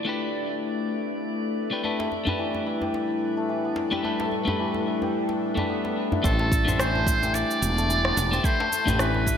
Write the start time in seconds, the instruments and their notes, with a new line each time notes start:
Already playing: santur A3 E4, synth drone A3 C4 E4 B4, synth texture D5
0.05 clean electric guitar A3 D4 G4
0.09 clean electric guitar B4
1.71 clean electric guitar A3 D4 G4 B4
1.83 synth drone A2 G3 D4 A4, clean electric guitar A3 D4 G4 B4, santur A3, djembe tone
1.99 santur A3, djembe slap
2.12 djembe tone
2.25 clean electric guitar A3 D4 G4 B4, djembe bass
2.39 santur E3
2.55 djembe tone
2.67 santur E4
2.82 santur G4, djembe tone
2.94 djembe slap
3.37 santur A3
3.49 santur E3
3.65 santur B3
3.76 djembe slap
3.91 clean electric guitar A3 D4 G4 B4, santur G4, djembe tone
4.03 clean electric guitar A3 D4 G4 B4, santur A3, djembe tone
4.20 santur A3, djembe slap
4.32 djembe tone
4.45 clean electric guitar A3 D4 G4, djembe bass
4.49 clean electric guitar B4
4.59 santur E3
4.74 djembe tone
4.87 santur E4
5.02 santur G4, djembe tone
5.29 djembe slap
5.55 clean electric guitar A3 D4 G4 B4, santur D4, djembe slap, djembe bass
5.69 santur B3
5.85 santur B3, djembe slap
6.12 santur E4, djembe bass
6.23 fretless electric bass A1, synth drone D3 A3 E4, clean electric guitar A3 D4 G4 C5, santur A3, muted trumpet A4, kick, cabasa
6.39 santur A3, djembe slap
6.52 kick, djembe tone, cabasa
6.65 clean electric guitar A3 D4 G4 C5, djembe bass, cabasa
6.80 santur E3, muted trumpet C5, cross-stick, cabasa
6.95 djembe tone
7.07 santur E4, kick, cabasa
7.22 santur G4, djembe tone, cabasa
7.34 muted trumpet D5, djembe slap, cabasa
7.51 cabasa
7.62 fretless electric bass E1, cabasa
7.78 santur A3, cabasa
7.90 santur E3, cabasa
8.05 santur B3, cross-stick
8.17 fretless electric bass E1, djembe slap, cabasa
8.31 clean electric guitar A3 D4 G4 C5, santur G4, djembe tone, cabasa
8.43 clean electric guitar A3 D4 G4 B4, santur A3, synth drone C4 G4, muted trumpet C5, kick, cabasa
8.60 santur A3, djembe slap
8.72 djembe tone, cabasa
8.85 fretless electric bass A1, clean electric guitar A3 D4 G4, djembe bass, cabasa
8.90 clean electric guitar B4
8.99 santur E3, muted trumpet B4, cross-stick, cabasa
9.14 djembe tone
9.27 santur E4, kick, cabasa